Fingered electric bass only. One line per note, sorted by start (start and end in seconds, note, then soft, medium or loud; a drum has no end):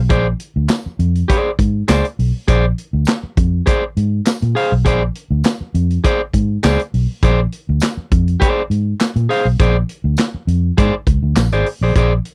0.10 0.33 A#1 loud
0.56 0.67 D2 medium
0.86 muted fingered electric bass stroke soft
0.99 1.22 F2 medium
1.59 1.82 G#2 medium
1.89 2.01 C#2 medium
2.19 2.31 B1 medium
2.49 2.71 A#1 loud
2.93 3.04 D2 medium
3.23 muted fingered electric bass stroke soft
3.37 3.60 F2 loud
3.97 4.20 G#2 medium
4.42 4.53 A#2 medium
4.72 4.86 B1 medium
4.86 5.09 A#1 loud
5.31 5.42 D2 medium
5.61 muted fingered electric bass stroke soft
5.74 5.97 F2 medium
6.34 6.57 G#2 medium
6.64 6.76 C#2 medium
6.94 7.06 B1 medium
7.23 7.46 A#1 loud
7.69 7.79 D2 loud
7.97 muted fingered electric bass stroke soft
8.12 8.35 F2 medium
8.70 8.93 G#2 medium
9.16 9.26 A#2 loud
9.45 9.56 B1 medium
9.60 9.82 A#1 loud
10.04 10.15 D2 medium
10.34 muted fingered electric bass stroke soft
10.47 10.70 F2 medium
10.78 10.90 G#2 loud
11.07 11.19 C#2 medium
11.23 11.33 D2 medium
11.36 11.48 A#1 medium
11.52 11.62 G#1 medium
11.81 11.92 A#1 medium
11.96 12.18 A#1 loud